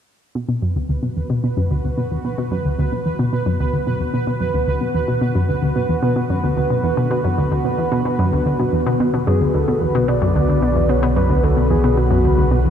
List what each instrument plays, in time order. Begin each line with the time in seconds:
0.35 synth arpeggio sound B2, analog synth pad D3, synth texture B4
0.43 analog synth pad B3
0.49 synth arpeggio sound B2
0.62 synth arpeggio sound F#2
0.69 analog synth pad F#4
0.76 synth arpeggio sound D2
0.89 synth arpeggio sound D2
1.03 synth arpeggio sound B2
1.17 synth arpeggio sound E2
1.23 analog synth pad B4
1.30 synth arpeggio sound B2
1.44 synth arpeggio sound B2
1.57 synth arpeggio sound F#2
1.71 synth arpeggio sound D2
1.84 synth arpeggio sound D2
1.97 synth arpeggio sound B2
2.11 synth arpeggio sound E2
2.25 synth arpeggio sound B2
2.38 synth arpeggio sound B2
2.51 synth arpeggio sound F#2
2.65 synth arpeggio sound D2
2.78 synth arpeggio sound D2
2.92 synth arpeggio sound B2
3.06 synth arpeggio sound E2
3.19 synth arpeggio sound B2
3.33 synth arpeggio sound B2
3.46 synth arpeggio sound F#2
3.60 synth arpeggio sound D2
3.73 synth arpeggio sound D2
3.87 synth arpeggio sound B2
4.00 synth arpeggio sound E2
4.14 synth arpeggio sound B2
4.27 synth arpeggio sound B2
4.40 synth arpeggio sound F#2
4.54 synth arpeggio sound D2
4.67 synth arpeggio sound D2
4.81 synth arpeggio sound B2
4.94 synth arpeggio sound E2
5.08 synth arpeggio sound B2
5.21 synth arpeggio sound B2
5.35 synth arpeggio sound F#2
5.49 synth arpeggio sound D2
5.62 synth arpeggio sound D2
5.76 synth arpeggio sound B2
5.89 synth arpeggio sound E2
6.03 synth arpeggio sound B2
6.16 synth arpeggio sound B2
6.30 synth arpeggio sound F#2
6.43 synth arpeggio sound D2
6.57 synth arpeggio sound D2
6.70 synth arpeggio sound B2
6.84 synth arpeggio sound E2
6.97 synth arpeggio sound B2
7.11 synth arpeggio sound B2
7.24 synth arpeggio sound F#2
7.38 synth arpeggio sound D2
7.51 synth arpeggio sound D2
7.65 synth arpeggio sound B2
7.78 synth arpeggio sound E2
7.92 synth arpeggio sound B2
8.05 synth arpeggio sound B2
8.19 synth arpeggio sound F#2
8.33 synth arpeggio sound D2
8.46 synth arpeggio sound D2
8.59 synth arpeggio sound B2
8.73 synth arpeggio sound E2
8.86 synth arpeggio sound B2
9.00 sub bass B1, synth arpeggio sound B2, synth texture F#5
9.14 synth arpeggio sound B2
9.27 synth arpeggio sound F#2, analog synth lead G#4
9.41 synth arpeggio sound D2
9.54 synth arpeggio sound D2, analog synth lead A4
9.68 synth arpeggio sound B2
9.81 synth arpeggio sound E2, analog synth lead B4
9.95 synth arpeggio sound B2
10.08 synth arpeggio sound B2, analog synth lead D5
10.22 synth arpeggio sound F#2
10.35 synth arpeggio sound D2
10.49 synth arpeggio sound D2
10.62 synth arpeggio sound B2
10.76 synth arpeggio sound E2
10.89 synth arpeggio sound B2, analog synth lead C#5
11.03 synth arpeggio sound B2
11.16 synth arpeggio sound F#2, analog synth lead B4
11.30 synth arpeggio sound D2
11.43 synth arpeggio sound D2, analog synth lead A4
11.57 synth arpeggio sound B2
11.70 synth arpeggio sound E2, analog synth lead G#4
11.84 synth arpeggio sound B2
11.97 synth arpeggio sound B2, analog synth lead F#4
12.11 synth arpeggio sound F#2
12.25 synth arpeggio sound D2
12.38 synth arpeggio sound D2
12.51 synth arpeggio sound B2
12.65 synth arpeggio sound E2